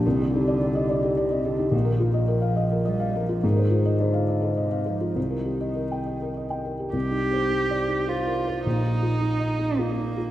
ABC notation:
X:1
M:3/4
L:1/16
Q:1/4=105
K:Cm
V:1 name="Felt piano"
C,, G E d G e d G d e G E | B,,, B F e B f e B e f B F | A,, c F e c f e c e f c F | C,, B G e B g e B e g B G |
(3C,,2 E2 c2 (3E2 d2 E2 (3c2 B2 c2 | (3B,,,2 E2 F2 (3E2 e2 E2 (3F2 E2 F2 |]
V:2 name="Cello" clef=bass
E,2 D,6 C,2 D,2 | E,2 F,6 G,2 F,2 | E,4 D,4 C,2 F,2 | E,8- E,2 z2 |
G8 F4 | E8 B,4 |]